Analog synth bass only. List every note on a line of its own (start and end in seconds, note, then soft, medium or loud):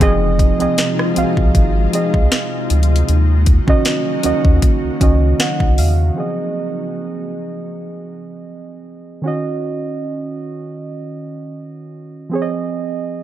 0.01 0.52 F1 loud
0.61 0.68 C2 medium
1.17 1.25 C2 medium
1.37 1.52 C2 loud
1.55 1.88 G#1 loud
2.14 2.29 C2 medium
2.71 3.03 D2 medium
3.09 3.59 D#2 loud
3.68 3.75 D#2 medium
4.25 4.33 D#2 medium
4.45 4.60 D#2 loud
4.84 4.91 C#2 soft
5.01 5.34 C#2 medium
5.60 5.80 C2 medium
5.78 6.11 E2 medium